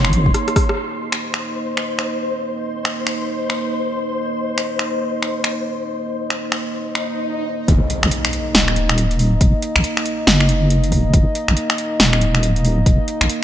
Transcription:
Already playing: wobble bass F#1, analog synth pad A#3 D#4 C#5, synth texture C6
0.05 finger snap
0.13 wobble bass G#1, closed hi-hat
0.26 wobble bass D#1, kick
0.34 cross-stick, closed hi-hat
0.48 cross-stick, closed hi-hat
0.56 kick, cross-stick, open hi-hat
0.69 cross-stick
0.78 analog synth pad A#3 D#4 D#5, synth texture C5
1.12 finger snap
1.34 finger snap
1.77 finger snap
1.99 finger snap
2.85 finger snap
3.07 finger snap
3.50 finger snap
4.58 finger snap
4.79 finger snap
5.23 finger snap
5.44 finger snap
6.30 finger snap
6.52 finger snap
6.82 swell
6.95 finger snap
7.68 wobble bass D#1, analog synth pad A#3 D#4 D#5, kick, closed hi-hat, impact
7.90 closed hi-hat
8.03 wobble bass A#1, finger snap
8.11 closed hi-hat
8.25 finger snap
8.33 closed hi-hat
8.55 wobble bass D#1, snare, closed hi-hat
8.68 finger snap
8.76 closed hi-hat
8.89 finger snap
8.98 closed hi-hat
9.11 closed hi-hat
9.19 open hi-hat
9.41 wobble bass D#1, kick, closed hi-hat
9.62 closed hi-hat
9.76 wobble bass A#1, finger snap
9.84 closed hi-hat
9.97 finger snap
10.06 closed hi-hat
10.27 wobble bass F#1, snare, closed hi-hat
10.40 finger snap
10.49 closed hi-hat
10.70 closed hi-hat
10.84 closed hi-hat
10.92 wobble bass D#1, kick, open hi-hat
11.14 wobble bass D#1, kick, closed hi-hat
11.35 closed hi-hat
11.48 wobble bass A#1, finger snap
11.57 closed hi-hat
11.70 finger snap
11.78 closed hi-hat
12.00 wobble bass D#1, snare, closed hi-hat
12.13 finger snap
12.21 closed hi-hat
12.35 finger snap
12.43 closed hi-hat
12.56 closed hi-hat
12.65 open hi-hat
12.86 wobble bass D#1, kick, closed hi-hat
13.08 closed hi-hat
13.21 wobble bass A#1, finger snap
13.29 closed hi-hat

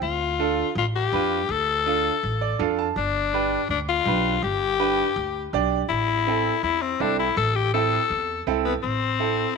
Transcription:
0.02 upright bass D2, alto saxophone F4
0.39 upright piano D4 F4 A4
0.75 upright bass A1, alto saxophone F4
0.95 alto saxophone G4
1.12 upright bass F2, upright piano D4 F4 B4
1.49 upright bass D2, alto saxophone A4
1.86 upright piano D4 F4 A4
2.23 upright bass A1
2.41 upright piano D5
2.59 upright bass F2, upright piano D4 F4 A4 F5
2.79 upright piano A5
2.96 upright bass G1, alto saxophone D4
3.33 upright piano D4 G4 B4
3.69 upright bass D2, alto saxophone D4
3.89 alto saxophone F4
4.06 upright bass B1, upright piano D4 G4 B4
4.42 upright bass G1, alto saxophone G4
4.79 upright piano D4 G4 B4
5.16 upright bass D2
5.53 upright bass B1, upright piano D4 G4 D5
5.89 upright bass A1, alto saxophone E4
6.27 upright piano C4 E4 A4
6.63 upright bass E2, alto saxophone E4
6.81 alto saxophone C4
7.00 upright bass C2, upright piano C4 E4 A4, alto saxophone D4
7.19 alto saxophone E4
7.37 upright bass A1, alto saxophone A4
7.55 alto saxophone G4
7.74 upright piano C4 E4 A4, alto saxophone A4
8.10 upright bass E2
8.47 upright bass C2, upright piano C4 E4 A4
8.65 alto saxophone B3
8.82 upright bass A1, alto saxophone C4
9.20 upright piano C4 E4 A4

